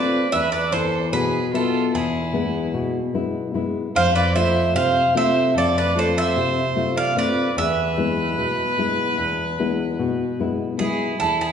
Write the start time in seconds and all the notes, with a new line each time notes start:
Already playing: A3 C4 F4 B4 D5
0.32 E2 B4 E5
0.52 B4 D5
0.72 E3 E4 A4 C5
1.13 B2 G#4 B4
1.54 B3 F4 A4 E5
1.94 E2 E4 G#4
2.33 G#3 B3 E4
2.74 B2
3.14 G#3 B3 E4
3.54 G#3 B3 E4
3.96 F2 C5 F5
4.15 B4 D5
4.35 A3 C4 F4 C5 E5
4.75 C3 C5 F5
5.15 A3 C4 F4 C5 E5
5.55 F2 A4 D5
5.78 B4 D5
5.95 A3 C4 F4 A4 C5
6.17 C5 E5
6.37 C3
6.76 A3 C4 F4
6.97 D5 F5
7.16 A3 C4 F4 B4 D5
7.57 E2 B4 E5
7.98 G#3 B3 E4
8.38 B2
8.78 G#3 B3 E4
9.18 E2
9.60 G#3 B3 E4
9.99 B2
10.40 G#3 B3 E4
10.79 G#3 B3 E4 G#4
11.20 E2 E4 A4
11.41 E4 G#4